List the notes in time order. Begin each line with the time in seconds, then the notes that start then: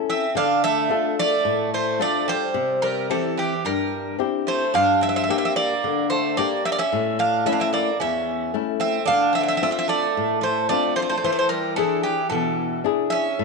Already playing: C#4 E4 A4
0.10 C4 E5
0.35 D3 D4 F5
0.64 A3 E5
0.89 D4 F4 A4
1.19 A3 D5
1.45 A2
1.74 A3 C5
1.99 A3 D4 F4 A4 D5
2.28 G3 C5
2.54 C3
2.82 G3 A#4
3.10 E3 C4 E4 G4 A4
3.38 E3 G4
3.65 G2 G3 A#4
4.19 C4 E4 G4
4.47 A3 C5
4.74 G2 D4 F5
5.01 C4 E5
5.09 C4 E5
5.16 C4 E5
5.24 C4 E5
5.29 A#3 C4 D4 G4 E5
5.38 C4 E5
5.45 C4 E5
5.56 A#3 D5
5.84 D3
6.10 A3 C5
6.37 A#3 D4 G4 D5
6.65 C4 E5
6.72 A#3 D5
6.78 C#4 E5
6.92 A2
7.19 D4 F5
7.46 A3 C#4 E4 E5
7.52 D4 F5
7.60 C4 E5
7.73 A#3 D5
8.00 E2 C#4 E5
8.54 A3 C#4 E4
8.80 C4 E5
9.06 D3 D4 F5
9.33 C4 E5
9.41 C4 E5
9.48 C4 E5
9.57 C4 E5
9.62 C4 D4 F4 E5
9.71 C4 E5
9.78 C4 E5
9.88 A3 D5
10.17 A2
10.41 A3 C5
10.69 A3 C4 D4 F4 D5
10.96 A3 C5
11.02 A3 C5
11.10 A3 C5
11.17 A3 C5
11.24 E3 A3 C5
11.32 A3 C5
11.39 A3 C5
11.49 G3 A#4
11.76 E3 D4 E4 G#4 A4
12.03 E3 G4
12.30 B2 E3 A4
12.84 D4 E4 G#4
13.10 C#4 E5
13.39 A2